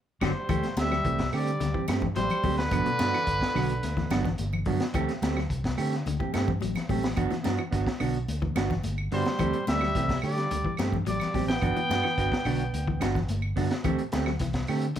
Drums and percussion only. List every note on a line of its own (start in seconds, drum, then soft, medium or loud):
0.21 kick medium
0.21 snare medium
0.21 high conga medium
0.21 claves loud
0.49 kick medium
0.49 closed hi-hat medium
0.49 low conga medium
0.49 claves medium
0.63 snare soft
0.63 closed hi-hat soft
0.63 high conga medium
0.77 snare medium
0.77 closed hi-hat medium
0.77 high conga loud
0.92 snare soft
0.92 claves medium
1.05 kick medium
1.05 closed hi-hat medium
1.19 kick medium
1.19 snare medium
1.19 closed hi-hat soft
1.32 open hi-hat medium
1.32 claves medium
1.47 closed hi-hat soft
1.60 snare soft
1.60 closed hi-hat medium
1.60 high conga medium
1.74 kick medium
1.88 snare medium
1.88 closed hi-hat medium
1.88 high conga loud
1.88 claves medium
2.02 kick medium
2.02 low conga medium
2.16 snare soft
2.16 closed hi-hat medium
2.16 high conga medium
2.30 closed hi-hat soft
2.30 low conga medium
2.30 claves medium
2.43 kick medium
2.43 open hi-hat medium
2.43 high conga medium
2.59 snare medium
2.71 kick loud
2.71 closed hi-hat medium
2.71 low conga medium
2.71 claves medium
2.86 closed hi-hat soft
2.86 high conga medium
2.99 snare medium
2.99 closed hi-hat medium
2.99 high conga loud
3.14 snare soft
3.14 claves medium
3.27 kick medium
3.27 closed hi-hat medium
3.41 kick medium
3.41 snare medium
3.56 snare soft
3.56 open hi-hat medium
3.56 claves medium
3.69 closed hi-hat soft
3.83 snare soft
3.83 closed hi-hat medium
3.83 high conga medium
3.97 kick medium
3.97 snare soft
3.97 high conga medium
4.10 snare medium
4.10 closed hi-hat medium
4.10 high conga loud
4.10 claves medium
4.24 kick medium
4.24 snare soft
4.24 low conga medium
4.38 closed hi-hat medium
4.38 high conga loud
4.53 low conga medium
4.53 claves medium
4.66 kick medium
4.66 open hi-hat medium
4.80 snare medium
4.80 closed hi-hat soft
4.94 kick medium
4.94 closed hi-hat medium
4.94 low conga medium
4.94 claves medium
5.09 snare soft
5.09 closed hi-hat soft
5.22 snare medium
5.22 closed hi-hat medium
5.22 high conga loud
5.37 snare soft
5.37 claves medium
5.50 kick medium
5.50 closed hi-hat medium
5.64 kick medium
5.64 snare medium
5.64 closed hi-hat soft
5.78 open hi-hat medium
5.78 claves medium
5.93 snare soft
5.93 closed hi-hat soft
6.06 closed hi-hat medium
6.06 high conga medium
6.20 kick medium
6.20 high conga medium
6.34 snare medium
6.34 closed hi-hat medium
6.34 high conga loud
6.34 claves medium
6.48 kick medium
6.48 low conga medium
6.61 closed hi-hat medium
6.61 high conga medium
6.75 snare soft
6.75 closed hi-hat soft
6.75 low conga medium
6.75 claves medium
6.89 kick medium
6.89 open hi-hat medium
6.89 high conga medium
7.03 snare medium
7.03 high conga medium
7.16 kick medium
7.16 closed hi-hat medium
7.16 low conga medium
7.16 claves medium
7.31 snare soft
7.31 closed hi-hat soft
7.31 high conga medium
7.44 snare medium
7.44 closed hi-hat medium
7.44 high conga loud
7.59 claves medium
7.72 kick medium
7.72 snare soft
7.72 closed hi-hat medium
7.87 kick medium
7.87 snare medium
8.00 open hi-hat medium
8.00 claves medium
8.14 closed hi-hat soft
8.28 closed hi-hat medium
8.28 high conga medium
8.42 kick medium
8.42 high conga medium
8.56 snare medium
8.56 closed hi-hat medium
8.56 high conga loud
8.56 claves medium
8.70 kick medium
8.70 snare soft
8.70 low conga medium
8.83 closed hi-hat medium
8.83 high conga medium
8.98 claves medium
9.12 snare soft
9.12 open hi-hat medium
9.25 snare medium
9.25 closed hi-hat soft
9.25 high conga medium
9.39 kick medium
9.39 closed hi-hat medium
9.39 low conga medium
9.39 claves medium
9.53 closed hi-hat soft
9.53 high conga medium
9.67 snare medium
9.67 closed hi-hat medium
9.67 high conga loud
9.81 snare soft
9.81 claves medium
9.95 kick medium
9.95 snare soft
9.95 closed hi-hat medium
10.09 kick medium
10.09 snare medium
10.09 closed hi-hat soft
10.22 open hi-hat medium
10.22 claves medium
10.37 snare soft
10.37 closed hi-hat soft
10.51 closed hi-hat medium
10.51 high conga medium
10.65 kick medium
10.77 snare medium
10.77 closed hi-hat medium
10.77 high conga loud
10.77 claves medium
10.92 kick medium
10.92 low conga medium
11.06 closed hi-hat medium
11.06 high conga medium
11.20 snare soft
11.20 closed hi-hat soft
11.20 low conga medium
11.20 claves medium
11.34 kick medium
11.34 snare soft
11.34 open hi-hat medium
11.34 high conga medium
11.49 snare medium
11.49 high conga medium
11.61 kick medium
11.61 closed hi-hat medium
11.61 low conga medium
11.61 claves medium
11.77 closed hi-hat soft
11.77 high conga medium
11.90 snare medium
11.90 closed hi-hat medium
11.90 high conga loud
12.03 snare soft
12.03 claves medium
12.18 kick medium
12.18 snare soft
12.18 closed hi-hat medium
12.32 kick medium
12.32 snare medium
12.45 open hi-hat medium
12.45 claves medium
12.60 closed hi-hat soft
12.74 closed hi-hat medium
12.74 high conga medium
12.88 kick medium
13.01 snare medium
13.01 closed hi-hat medium
13.01 high conga loud
13.01 claves medium
13.15 kick medium
13.15 snare soft
13.15 low conga medium
13.28 closed hi-hat medium
13.28 high conga loud
13.42 claves medium
13.57 kick medium
13.57 snare soft
13.57 open hi-hat medium
13.70 snare medium
13.70 closed hi-hat soft
13.84 kick medium
13.84 closed hi-hat medium
13.84 low conga medium
13.84 claves medium
13.98 closed hi-hat soft
14.12 snare medium
14.12 closed hi-hat medium
14.12 high conga loud
14.26 snare soft
14.26 claves medium
14.39 kick medium
14.39 snare soft
14.39 closed hi-hat medium
14.53 kick medium
14.53 snare medium
14.53 closed hi-hat soft
14.67 open hi-hat medium
14.67 claves medium
14.81 closed hi-hat soft
14.96 closed hi-hat medium